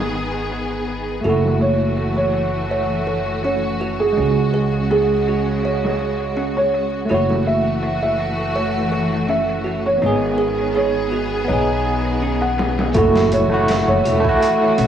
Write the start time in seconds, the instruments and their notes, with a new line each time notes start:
Already playing: upright bass G#1, string section D#3 B3 G#4, tine electric piano B3 D#4 G#4
0.15 closed hi-hat
0.34 closed hi-hat
0.52 closed hi-hat
0.70 closed hi-hat
0.87 closed hi-hat
1.21 string section E3 A3 F#4, tine electric piano A3, music box F#4, closed hi-hat
1.25 upright bass F#1, tine electric piano E4, felt piano A4
1.29 tine electric piano F#4
1.45 snare
1.60 felt piano C#5, closed hi-hat
1.97 closed hi-hat
2.16 felt piano C#5
2.33 closed hi-hat
2.69 music box C#5, closed hi-hat
3.07 music box A4, closed hi-hat
3.26 closed hi-hat
3.43 music box C#4, felt piano C#5, closed hi-hat
3.63 closed hi-hat
3.80 music box F#4, closed hi-hat
4.00 felt piano G#4
4.13 tine electric piano G#3
4.17 upright bass C#2, string section C#3 G#3, tine electric piano C#4, closed hi-hat
4.22 tine electric piano F#4
4.53 music box G#4, closed hi-hat
4.73 closed hi-hat
4.90 felt piano G#4, music box G#4, open hi-hat
5.27 music box F#4, closed hi-hat
5.63 music box C#5, closed hi-hat
5.85 snare
6.00 closed hi-hat
6.20 closed hi-hat
6.37 music box C#4, closed hi-hat
6.57 felt piano C#5, closed hi-hat
6.74 closed hi-hat
7.05 string section E3, tine electric piano A3, music box F#4
7.10 upright bass F#1, string section A3 F#4, tine electric piano E4, felt piano C#5, closed hi-hat
7.14 tine electric piano F#4
7.30 snare
7.46 felt piano E5, closed hi-hat
7.83 closed hi-hat
8.03 felt piano E5
8.20 closed hi-hat
8.56 music box C#5, closed hi-hat
8.92 music box A4, closed hi-hat
9.12 closed hi-hat
9.29 music box C#4, felt piano E5, closed hi-hat
9.49 closed hi-hat
9.64 music box F#4, closed hi-hat
9.86 felt piano C#5
9.97 tine electric piano B3
10.02 upright bass G#1, string section D#3 B3 G#4, tine electric piano D#4, closed hi-hat
10.06 tine electric piano G#4
10.38 music box G#4
10.75 music box G#4, felt piano C#5, open hi-hat
11.12 music box F#4, closed hi-hat
11.44 tine electric piano B3, music box C#5, closed hi-hat
11.49 upright bass B1, string section D#3, tine electric piano D#4
11.53 tine electric piano G#4
11.85 closed hi-hat
12.05 closed hi-hat
12.22 music box C#4, closed hi-hat
12.41 felt piano F#5, closed hi-hat
12.58 snare, closed hi-hat
12.78 snare, closed hi-hat
12.94 upright bass F#1, string section E3 A3 F#4, tine electric piano A3 E4 F#4, music box F#4, felt piano A4, kick, closed hi-hat, impact
13.16 snare
13.32 felt piano C#5, closed hi-hat
13.50 tine electric piano A3 E4
13.54 tine electric piano F#4
13.68 snare, closed hi-hat
13.88 upright bass F#1, felt piano C#5
14.05 upright bass E1, music box F#4, closed hi-hat
14.20 tine electric piano A3
14.24 tine electric piano E4, kick
14.29 tine electric piano F#4
14.41 music box F#5, closed hi-hat
14.78 upright bass B1, music box C#4, closed hi-hat